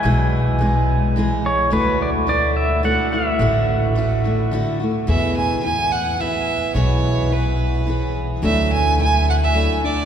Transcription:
<<
  \new Staff \with { instrumentName = "Fiddle" } { \time 3/4 \key e \mixolydian \tempo 4 = 107 r2. | r2. | r2. | e''8 gis''8 gis''8 fis''8 e''4 |
cis''4 b'4. r8 | e''8 gis''8 gis''8 fis''16 e''8. d''8 | }
  \new Staff \with { instrumentName = "Pedal steel guitar" } { \time 3/4 \key e \mixolydian gis''2~ gis''8 cis''8 | b'8 d''8 d''8 e''8 fis''8 e''8~ | e''2~ e''8 r8 | r2. |
r2. | r2. | }
  \new Staff \with { instrumentName = "Steel-string acoustic guitar" } { \time 3/4 \key e \mixolydian <e, b, e gis b gis'>4 <e gis b gis'>4 <e gis b gis'>4 | <d a e' fis'>4 <d a e' fis'>4 <d a e' fis'>8 <a e' fis'>8 | <d a e' fis'>4 <d a e' fis'>8 <a e' fis'>8 <d a e' fis'>8 <a e' fis'>8 | <e, b, e b e' gis'>4 <e b e' gis'>4 <e b e' gis'>4 |
<e, b, e b e' gis'>4 <e b e' gis'>4 <e b e' gis'>4 | <d fis a d' e'>4 <fis a d' e'>4 <fis a d' e'>8 <a d' e'>8 | }
  \new Staff \with { instrumentName = "Upright bass" } { \clef bass \time 3/4 \key e \mixolydian b,,2. | d,2. | a,,2. | e,2. |
b,,2. | d,2. | }
>>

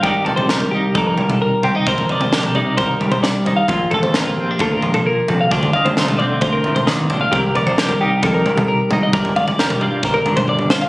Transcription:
<<
  \new Staff \with { instrumentName = "Clean electric guitar" } { \time 4/4 \key c \dorian \tempo 4 = 132 g'8 a'16 c''8 bes'16 g'8 a'16 bes'8 a'16 bes'8 g'16 ees''16 | c''8 ees''16 c''8 a'16 d''8 c''16 bes'8 c''16 d''8 c''16 f''16 | f'8 a'16 c''8 bes'16 g'8 a'16 bes'8 a'16 bes'8 a'16 f''16 | d''8 f''16 c''8 a'16 d''8 c''16 bes'8 c''16 d''8 c''16 f''16 |
g'8 bes'16 c''8 bes'16 g'8 a'16 bes'8 a'16 bes'8 g'16 ees''16 | d''8 f''16 d''8 bes'16 d''8 c''16 bes'8 c''16 d''8 c''16 f''16 | }
  \new Staff \with { instrumentName = "Clean electric guitar" } { \time 4/4 \key c \dorian << { <g ees' bes' d''>8 d''8 bes'8 ees'8 bes'4. c'16 ees'16 | bes'8 d''8 bes'8 ees'8 bes'4. ees'8 | f'8 a'8 f'8 c'16 d'16 f'2 | f'8 ees''8 f'8 c'8 f'2 |
bes'8 d''8 bes'8 ees'8 bes'4. ees'8 | bes'8 d''8 bes'8 f'8 bes'4. f'8 | } \\ { c4 g4. g4. | c4 g4. g4. | bes,4 bes4. f8 bes,8 c8 | d4 a4. a,8 ees8 d8 |
c4 g4. g4. | g,4 g4. d4. | } >> }
  \new Staff \with { instrumentName = "Fingered electric bass" } { \clef bass \time 4/4 \key c \dorian c,8 bes,,4 c,8 f,8 c,8 r8 c,8 | bes,,8 r16 c,16 bes,,8 c16 c16 c,8 r8 c,4 | bes,,8 a,,4 bes,,8 d,8 bes,,8 r8 bes,,8 | d,8 r16 d,16 c,8 d16 d16 d,8 r8 b,,4 |
c,8 bes,,4 c,8 f,8 c,8 r8 c,8 | g,,8 r16 g,,16 f,,8 g,16 g,16 g,,8 r8 g,,4 | }
  \new DrumStaff \with { instrumentName = "Drums" } \drummode { \time 4/4 <bd tomfh>8 tomfh16 tomfh16 sn16 tomfh8. <bd tomfh>8 tomfh16 <tomfh toml>16 r8 tomfh8 | <bd tomfh>16 tomfh16 tomfh16 tomfh16 sn16 <tomfh toml>16 toml8 <bd tomfh>8 tomfh16 <tomfh toml>16 sn8 tomfh8 | <bd tomfh>8 tomfh16 tomfh16 sn16 tomfh8. <bd tomfh>8 tomfh16 <tomfh toml>16 r8 tomfh8 | <bd tomfh>16 tomfh16 tomfh16 tomfh16 sn16 <tomfh toml>16 toml8 <bd tomfh>8 tomfh16 <tomfh toml>16 sn8 tomfh8 |
<bd tomfh>8 tomfh16 tomfh16 sn16 tomfh8. <bd tomfh>8 tomfh16 <tomfh toml>16 r8 tomfh8 | <bd tomfh>16 tomfh16 tomfh16 tomfh16 sn16 <tomfh toml>16 toml8 <bd tomfh>8 tomfh16 <tomfh toml>16 tommh16 toml16 sn16 tomfh16 | }
>>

